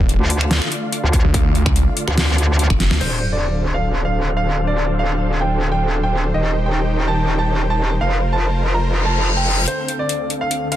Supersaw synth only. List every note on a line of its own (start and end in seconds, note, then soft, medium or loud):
0.00 2.97 D3 medium
0.00 2.97 A3 medium
0.00 2.97 F4 medium
0.00 2.97 D5 medium
0.00 3.00 F5 medium
3.01 6.31 D3 medium
3.01 6.31 D4 medium
3.01 6.31 A4 medium
3.01 7.97 C5 medium
3.01 6.31 F5 medium
6.34 7.99 D#3 medium
6.34 7.99 D#4 medium
6.34 7.99 G4 medium
6.34 7.99 G5 medium
8.01 9.66 F4 medium
8.01 9.66 A#4 medium
8.01 9.66 C5 medium
9.68 10.76 D2 medium
9.68 10.76 D3 medium
9.68 10.76 C4 medium
9.68 10.76 A4 medium
9.68 10.76 F5 medium